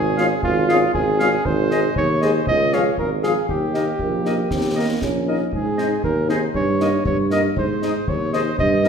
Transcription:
0.00 0.34 G#1 medium
0.00 0.40 G#4 medium
0.17 0.27 G#3 soft
0.17 0.27 C#4 soft
0.17 0.27 F4 soft
0.17 0.27 G#4 soft
0.17 0.26 F5 soft
0.17 snare soft
0.43 0.86 G#1 medium
0.43 0.91 F4 medium
0.43 concert bass drum medium
0.68 0.78 G#3 soft
0.68 0.78 C#4 soft
0.68 0.78 F4 soft
0.68 0.78 G#4 soft
0.68 0.77 F5 soft
0.68 snare soft
0.93 1.36 G#1 medium
0.93 1.47 G#4 medium
0.93 concert bass drum medium
1.19 1.29 G#3 soft
1.19 1.28 C#4 soft
1.19 1.28 F4 soft
1.19 1.28 G#4 soft
1.19 1.28 F5 soft
1.19 snare soft
1.45 1.88 G#1 medium
1.45 1.96 C5 medium
1.45 concert bass drum medium
1.70 1.80 G#3 soft
1.70 1.80 D#4 soft
1.70 1.80 G#4 soft
1.70 1.80 D#5 soft
1.70 snare soft
1.96 2.39 D#2 medium
1.96 2.25 C#5 medium
1.96 concert bass drum medium
2.21 2.31 G#3 soft
2.21 2.31 D#4 soft
2.21 2.31 G#4 soft
2.21 2.47 C5 medium
2.21 2.31 D#5 soft
2.21 snare soft
2.47 2.90 C#2 medium
2.47 2.75 D#5 medium
2.47 concert bass drum medium
2.72 2.82 F3 soft
2.72 2.82 F4 soft
2.72 2.81 G#4 soft
2.72 2.82 G#4 soft
2.72 2.98 C#5 medium
2.72 2.82 F5 soft
2.72 snare soft
2.98 3.36 G#1 soft
2.98 3.10 A#4 medium
2.98 concert bass drum medium
3.23 3.33 F3 soft
3.23 3.33 F4 soft
3.23 3.32 G#4 soft
3.23 3.47 G#4 soft
3.23 3.33 G#4 soft
3.23 3.32 F5 soft
3.23 snare soft
3.49 3.92 D#2 soft
3.49 4.98 G4 soft
3.49 concert bass drum medium
3.74 3.84 A#3 soft
3.74 3.84 D#4 soft
3.74 3.84 A#4 soft
3.74 3.83 D#5 soft
3.74 snare soft
3.99 4.43 A#1 soft
3.99 4.48 A#3 soft
3.99 concert bass drum medium
4.25 4.35 A#3 soft
4.25 4.35 D#4 soft
4.25 4.35 A#4 soft
4.25 4.35 D#5 soft
4.25 snare soft
4.51 4.93 D#2 soft
4.51 4.63 C4 soft
4.51 concert bass drum medium
4.51 snare soft
4.76 4.86 A#3 soft
4.76 5.01 A#3 soft
4.76 4.86 D#4 soft
4.76 4.85 A#4 soft
4.76 4.85 D#5 soft
5.02 5.44 A#1 soft
5.02 5.49 C#4 soft
5.02 concert bass drum medium
5.02 snare soft
5.27 5.37 A#3 soft
5.27 5.37 D#4 soft
5.27 5.36 A#4 soft
5.27 5.36 D#5 soft
5.53 5.95 G#2 soft
5.53 6.01 G#4 soft
5.53 concert bass drum medium
5.78 5.87 C4 soft
5.78 5.88 D#4 soft
5.78 5.87 C5 soft
5.78 5.87 D#5 soft
5.78 snare soft
6.04 6.46 D#2 soft
6.04 6.28 A#4 soft
6.04 concert bass drum medium
6.29 6.38 C4 soft
6.29 6.38 D#4 soft
6.29 6.41 G#4 soft
6.29 6.38 C5 soft
6.29 6.38 D#5 soft
6.29 snare soft
6.54 6.97 G2 soft
6.54 7.02 C#5 medium
6.54 concert bass drum medium
6.80 6.89 A#3 soft
6.80 6.90 D#4 soft
6.80 6.89 A#4 soft
6.80 6.90 D#5 soft
6.80 snare soft
7.05 7.48 G2 soft
7.05 7.17 C#5 medium
7.05 concert bass drum medium
7.31 7.41 A#3 soft
7.31 7.41 D#4 soft
7.31 7.40 A#4 soft
7.31 7.41 D#5 soft
7.31 7.43 D#5 medium
7.31 snare soft
7.56 7.99 G#2 soft
7.56 8.10 C5 medium
7.56 concert bass drum medium
7.82 7.92 G#3 soft
7.82 7.92 D#4 soft
7.82 7.91 G#4 soft
7.82 7.91 D#5 soft
7.82 snare soft
8.07 8.50 D#2 soft
8.07 8.35 C#5 medium
8.07 concert bass drum medium
8.32 8.43 G#3 soft
8.32 8.43 D#4 soft
8.32 8.41 G#4 soft
8.32 8.59 C5 medium
8.32 8.42 D#5 soft
8.32 snare soft
8.58 8.89 G2 medium
8.58 8.89 D#5 medium
8.58 concert bass drum medium
8.83 8.89 A#3 soft
8.83 8.89 C#4 soft
8.83 8.89 D#4 soft
8.83 8.89 A#4 soft
8.83 8.89 D#5 soft
8.83 snare soft

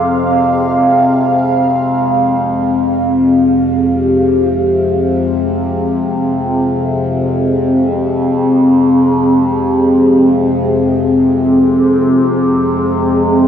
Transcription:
0.00 2.09 F2 medium
0.00 2.09 C3 medium
0.00 13.48 C4 medium
0.00 13.48 G#4 medium
0.00 2.12 F5 medium
0.00 13.48 F5 medium
2.10 13.48 F2 medium
2.10 13.48 C3 medium

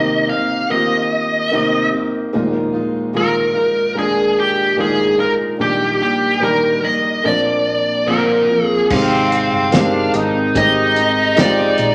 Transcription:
0.00 2.30 C2 soft
0.00 0.31 C3 medium
0.00 2.30 C3 soft
0.00 0.31 D#3 medium
0.00 0.31 A#3 medium
0.00 0.70 A#3 medium
0.00 0.31 C4 medium
0.00 0.70 C4 medium
0.00 1.53 D#4 medium
0.00 0.30 G4 medium
0.00 0.29 D#5 medium
0.29 0.71 C4 soft
0.29 0.71 G4 soft
0.29 0.71 F5 medium
0.34 0.71 A#3 soft
0.70 1.52 D#3 medium
0.70 1.47 A#3 medium
0.70 1.53 A#3 medium
0.70 1.48 C4 medium
0.70 1.52 C4 soft
0.70 1.48 F4 medium
0.70 1.52 G4 medium
0.70 1.89 D#5 medium
1.51 1.92 C3 medium
1.51 1.93 D#3 medium
1.51 2.29 A#3 medium
1.51 1.93 A#3 medium
1.51 2.29 C4 medium
1.51 1.92 C4 medium
1.51 2.30 D#4 medium
1.51 1.91 G4 medium
1.92 2.33 A#3 soft
1.92 2.33 C4 soft
1.92 2.33 G4 medium
2.33 5.55 A#1 medium
2.33 2.73 A#2 medium
2.33 5.56 A#2 medium
2.33 2.74 D#3 medium
2.33 3.10 G#3 medium
2.33 2.74 G#3 medium
2.33 3.11 A#3 medium
2.33 2.73 D#4 medium
2.33 3.11 D#4 medium
2.33 2.71 F4 medium
2.73 3.13 G#3 soft
2.73 3.13 D#4 soft
2.73 3.14 F4 soft
3.13 3.54 A#2 medium
3.13 3.54 D#3 medium
3.13 3.55 G#3 medium
3.13 3.92 G#3 medium
3.13 3.92 A#3 medium
3.13 3.54 D#4 medium
3.13 3.52 F4 medium
3.13 3.93 F4 medium
3.13 3.98 A#4 medium
3.53 3.94 G#3 soft
3.53 3.95 D#4 soft
3.53 3.95 F4 soft
3.94 4.77 D#3 soft
3.94 4.77 G#3 soft
3.94 4.73 G#3 medium
3.94 4.73 A#3 medium
3.94 4.74 D4 medium
3.94 4.78 D#4 soft
3.94 4.78 F4 soft
3.98 4.39 G#4 medium
4.40 4.76 G4 medium
4.77 5.18 A#2 medium
4.77 5.18 D#3 medium
4.77 5.55 G#3 medium
4.77 5.19 G#3 medium
4.77 5.55 A#3 soft
4.77 5.18 D#4 medium
4.77 5.56 D#4 medium
4.77 5.17 F4 medium
4.77 5.20 G#4 medium
5.18 5.60 G#3 soft
5.18 5.60 D#4 soft
5.18 5.59 F4 soft
5.18 5.31 A#4 medium
5.58 7.19 A#1 soft
5.58 6.00 A#2 medium
5.58 7.19 A#2 soft
5.58 6.00 D#3 medium
5.58 6.36 G3 soft
5.58 6.00 G3 medium
5.58 6.00 A#3 medium
5.58 6.37 D4 soft
5.58 5.99 D4 medium
5.58 6.37 D#4 medium
5.58 5.98 G4 medium
5.58 6.02 G4 medium
6.00 6.41 G3 soft
6.00 6.41 A#3 soft
6.00 6.41 D4 soft
6.00 6.41 G4 soft
6.00 6.44 G4 medium
6.39 6.82 A#2 medium
6.39 6.82 D#3 medium
6.39 7.18 G3 medium
6.39 6.82 G3 medium
6.39 7.19 A#3 soft
6.39 6.81 A#3 medium
6.39 6.83 D4 medium
6.39 7.19 D#4 medium
6.39 6.79 G4 medium
6.44 6.85 A#4 medium
6.81 7.23 G3 soft
6.81 7.23 A#3 soft
6.81 7.23 G4 soft
6.81 7.25 D#5 medium
7.23 8.86 A#1 soft
7.23 8.87 A#2 soft
7.23 8.05 F3 soft
7.23 8.03 A#3 medium
7.23 8.06 A#3 medium
7.23 8.03 C4 medium
7.23 8.07 C4 soft
7.23 8.04 D4 medium
7.23 8.07 F4 soft
7.23 8.46 D5 medium
8.06 8.48 A#2 medium
8.06 8.48 D3 medium
8.06 8.48 F3 medium
8.06 8.86 A#3 medium
8.06 8.49 A#3 medium
8.06 8.49 C4 medium
8.06 8.86 C4 medium
8.06 8.47 F4 medium
8.06 8.86 F4 medium
8.06 8.64 A#4 medium
8.48 8.89 F3 soft
8.48 8.90 A#3 soft
8.48 8.89 C4 soft
8.48 8.90 F4 soft
8.64 8.86 G#4 medium
8.90 9.48 G#1 medium
8.90 10.10 C3 medium
8.90 9.71 G#3 medium
8.90 9.69 G#3 medium
8.90 9.69 C4 loud
8.90 9.69 C4 medium
8.90 9.73 C4 medium
8.90 10.14 D#4 medium
8.90 9.69 D#4 medium
8.90 9.75 G4 medium
8.90 9.69 G4 medium
8.90 10.10 F5 loud
8.90 kick loud
8.90 crash loud
9.32 closed hi-hat medium
9.53 10.10 G1 medium
9.72 10.51 D#3 medium
9.72 10.13 G#3 medium
9.72 10.51 G#3 medium
9.72 10.51 C4 medium
9.72 10.14 C4 medium
9.72 10.14 D4 medium
9.72 10.51 G4 medium
9.72 10.12 G4 medium
9.72 snare loud
9.72 closed hi-hat medium
10.14 10.52 G#1 medium
10.14 10.98 C4 soft
10.14 11.95 D#4 loud
10.14 10.97 D#4 medium
10.14 10.95 G4 medium
10.14 closed hi-hat medium
10.55 11.74 G#1 loud
10.55 11.33 G#3 medium
10.55 11.33 C4 medium
10.55 11.34 D#4 medium
10.55 11.34 G4 medium
10.55 11.38 D#5 loud
10.55 kick medium
10.55 closed hi-hat medium
10.95 11.36 C4 soft
10.95 11.37 D#4 soft
10.95 11.37 G4 medium
10.95 closed hi-hat medium
11.36 11.95 G#3 medium
11.36 11.95 C4 medium
11.36 11.95 D#4 medium
11.36 11.44 F4 medium
11.36 11.95 G4 medium
11.36 11.95 D5 medium
11.36 snare loud
11.36 closed hi-hat medium
11.44 11.95 G4 medium
11.78 11.95 A#1 medium
11.78 closed hi-hat medium

